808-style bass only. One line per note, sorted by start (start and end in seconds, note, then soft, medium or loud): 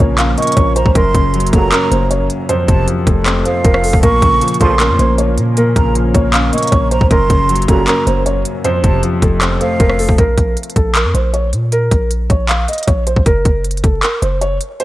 0.00 0.36 A#1 loud
0.57 0.85 A#1 loud
0.86 0.95 A#1 loud
0.95 1.14 F#1 loud
1.15 1.51 F#1 loud
1.53 1.71 F#1 loud
1.91 2.28 F#1 loud
2.68 2.87 F1 loud
3.07 3.44 F1 loud
3.65 3.92 F1 loud
3.93 4.03 F1 loud
4.03 4.21 A#1 loud
4.22 4.41 A#1 loud
4.61 4.91 A#1 loud
4.89 4.99 F2 loud
4.99 5.39 A#1 loud
5.38 5.74 A#2 loud
5.76 6.13 A#1 loud
6.15 6.51 A#1 loud
6.72 7.00 A#1 loud
7.01 7.10 A#1 loud
7.11 7.29 F#1 loud
7.30 7.67 F#1 loud
7.68 7.87 F#1 loud
8.07 8.44 F#1 loud
8.84 9.02 F1 loud
9.22 9.59 F1 loud
9.80 10.08 F1 loud
10.09 10.18 F1 loud
10.18 10.37 A#1 loud
10.38 10.56 A#1 loud
10.76 11.06 A#1 loud
11.05 11.14 F2 loud
11.14 11.54 A#1 loud
11.53 11.89 A#2 loud
11.91 12.28 A#1 loud
12.30 12.67 A#1 loud
12.88 13.15 A#1 loud
13.16 13.26 A#1 loud
13.26 13.45 F#1 loud
13.45 13.82 F#1 loud
13.84 14.02 F#1 loud
14.22 14.59 F#1 loud